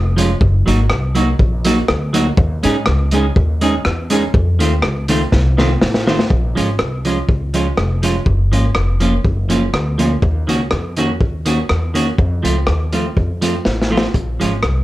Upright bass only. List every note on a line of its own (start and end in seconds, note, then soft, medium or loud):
0.00 0.34 F1 loud
0.41 0.63 F#1 loud
0.68 0.87 G#1 medium
0.92 1.33 C2 medium
1.40 1.82 A#1 loud
1.89 2.31 D2 loud
2.38 2.60 D#2 loud
2.65 2.84 G#2 medium
2.87 3.29 C#2 medium
3.37 3.78 D#2 loud
3.86 4.27 E2 medium
4.34 4.61 F2 loud
4.61 4.80 D#2 medium
4.84 5.25 C#2 medium
5.33 5.74 C2 loud
5.83 6.24 A1 medium
6.30 6.52 A#1 loud
6.57 6.76 G#1 medium
6.80 7.21 C2 medium
7.29 7.70 C#2 medium
7.78 8.19 F1 medium
8.26 8.52 F#1 loud
8.52 8.72 G#1 medium
8.76 9.17 F1 medium
9.25 9.66 F#1 loud
9.73 10.15 D2 loud
10.23 10.44 D#2 loud
10.49 10.73 C#2 medium
10.72 11.21 F2 medium
11.21 11.62 D#2 medium
11.70 12.11 E2 medium
12.19 12.41 F2 loud
12.44 12.64 C#2 medium
12.68 13.09 D#2 medium
13.17 13.58 F2 medium
13.66 14.07 A1 medium
14.15 14.36 A#1 medium
14.40 14.60 G#1 medium
14.64 14.84 C2 medium